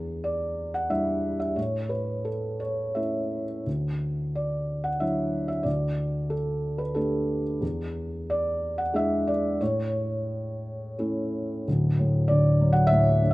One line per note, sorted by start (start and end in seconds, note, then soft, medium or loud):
0.00 1.53 E2 soft
0.24 0.70 D5 medium
0.74 0.91 F#5 medium
0.90 1.55 G3 soft
0.90 1.55 D4 soft
0.90 1.55 E4 soft
0.90 1.38 E5 medium
1.40 1.57 E5 medium
1.56 3.62 A2 soft
1.56 1.91 C#5 medium
1.89 2.26 B4 medium
2.25 2.61 A4 soft
2.60 2.97 C#5 medium
2.95 3.64 A3 soft
2.95 3.65 C#4 soft
2.95 3.65 E4 soft
2.95 3.45 E5 soft
3.66 5.62 D2 soft
4.35 4.87 D5 medium
4.84 5.01 F#5 medium
5.00 5.64 F#3 soft
5.00 5.64 D4 soft
5.00 5.64 E4 soft
5.00 5.47 E5 medium
5.48 5.64 E5 medium
5.63 7.58 D2 soft
5.63 6.32 D5 medium
6.30 6.81 A4 medium
6.78 6.96 B4 medium
6.95 7.60 A3 soft
6.95 7.60 D4 soft
6.95 7.60 G4 soft
6.95 7.41 A4 medium
7.61 9.56 E2 soft
8.30 8.80 D5 medium
8.78 8.95 F#5 medium
8.94 9.58 G#3 soft
8.94 9.58 D4 soft
8.94 9.59 E4 soft
8.94 9.29 E5 medium
9.27 9.61 D5 medium
9.61 11.63 A2 medium
9.61 10.95 C#5 medium
10.99 11.65 A3 soft
10.99 11.65 C#4 soft
10.99 11.66 E4 soft
11.68 13.34 D1 soft
11.68 13.34 D2 soft
11.99 12.90 A2 soft
12.28 13.21 D3 soft
12.28 12.72 D5 medium
12.61 13.34 F#3 medium
12.73 12.90 F#5 medium
12.87 13.29 E5 loud
12.91 13.34 A2 soft
13.22 13.34 D3 soft
13.31 13.34 E5 medium